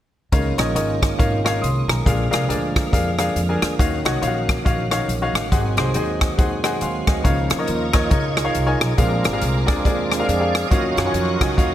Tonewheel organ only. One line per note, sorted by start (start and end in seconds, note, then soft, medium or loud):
0.32 2.04 D#3 medium
0.32 3.76 G#3 medium
0.32 5.48 A#3 medium
0.32 2.04 C#4 medium
0.32 2.04 F4 medium
2.08 3.79 D3 medium
2.08 3.79 F3 medium
2.08 5.50 F5 medium
3.79 5.51 D#3 medium
3.79 7.22 F#3 medium
3.79 5.51 C#4 medium
5.52 7.24 D#3 medium
5.52 7.23 G#3 medium
5.52 7.24 C4 medium
5.52 7.24 F#4 medium
7.26 7.91 F3 soft
7.26 7.91 A#3 soft
7.26 7.68 D#4 medium
7.68 7.95 D#4 medium
7.68 8.11 F4 medium
7.68 8.08 A#4 medium
7.95 8.10 F3 soft
7.95 8.11 A#3 soft
7.95 8.11 D#4 soft
8.12 8.94 D#4 medium
8.12 8.94 F4 medium
8.12 9.01 G#4 medium
8.98 10.67 G#3 soft
8.98 10.67 C4 soft
8.98 10.68 D4 medium
8.98 10.25 F4 medium
8.98 10.32 A#4 medium
10.26 10.69 G#4 medium
10.26 10.69 D5 medium
10.26 10.72 F5 loud
10.68 11.56 F#3 soft
10.68 11.38 C#4 soft
10.68 10.94 F4 medium
10.68 10.95 F#4 medium
10.68 11.35 A#4 medium
10.68 10.96 D#5 loud
10.93 11.57 F4 medium
10.93 11.38 F#4 medium
10.93 11.35 C#5 loud
11.36 11.57 C#4 medium
11.36 11.74 F#4 medium
11.36 11.74 A#4 loud
11.57 11.74 F#3 soft
11.57 11.74 C#4 soft
11.57 11.74 F4 medium